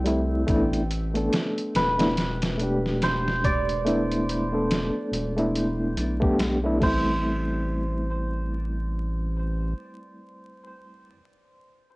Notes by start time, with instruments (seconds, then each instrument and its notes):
Already playing: analog synth bass C2
0.05 reed electric piano G3 A3 C4 E4, closed hi-hat
0.47 analog synth bass A1, reed electric piano A3 B3 D4 E4, kick, closed hi-hat
0.73 closed hi-hat
0.91 closed hi-hat
1.14 reed electric piano A3 B3 D4 A4, closed hi-hat
1.33 snare, closed hi-hat
1.58 closed hi-hat
1.75 analog synth bass E1, hammered dulcimer B4, snare, closed hi-hat
1.98 reed electric piano A3 B3 D4 E4, snare, closed hi-hat
2.17 snare, closed hi-hat
2.42 snare, closed hi-hat
2.58 reed electric piano B2 A3 D4, closed hi-hat
2.63 reed electric piano G4
2.86 snare
3.02 hammered dulcimer C5, snare, closed hi-hat
3.28 snare
3.44 hammered dulcimer D5, kick, closed hi-hat
3.69 closed hi-hat
3.85 reed electric piano A3 B3 D4 E4, closed hi-hat
4.11 closed hi-hat
4.29 closed hi-hat
4.52 reed electric piano A3 B3 D4 A4
4.71 snare, closed hi-hat
5.12 analog synth bass E1, closed hi-hat
5.36 reed electric piano A3 B3 D4 E4, closed hi-hat
5.55 closed hi-hat
5.97 analog synth bass B1, closed hi-hat
6.20 reed electric piano A3 B3 D4 G4, kick
6.39 snare, closed hi-hat
6.64 reed electric piano A3 B3 D4 E4
6.78 analog synth bass A1, reed electric piano G3 A3, kick, crash
6.83 reed electric piano C4 E4, hammered dulcimer C5